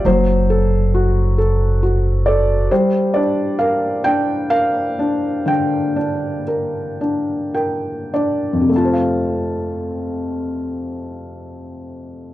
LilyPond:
<<
  \new Staff \with { instrumentName = "Felt piano" } { \time 6/8 \key f \major \tempo 4. = 41 << { c''2 r8 d''8 | c''8 d''8 f''8 g''8 f''4 | g''2 g''8 d''8 | a''2. | } \\ { fis8 a'8 fis'8 a'8 fis'8 a'8 | g8 d'8 bes'8 d'8 bes'8 d'8 | d8 d'8 bes'8 d'8 bes'8 d'8 | <f, c a f' c'' f''>2. | } >> }
  \new Staff \with { instrumentName = "Upright bass" } { \clef bass \time 6/8 \key f \major fis,,2. | r2. | r2. | r2. | }
>>